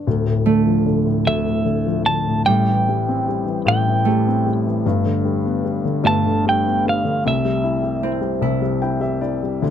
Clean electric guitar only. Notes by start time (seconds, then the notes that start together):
1.27 E5
2.06 A5
2.46 G5
3.68 G5
6.07 A5
6.49 G5
6.89 F5
7.28 E5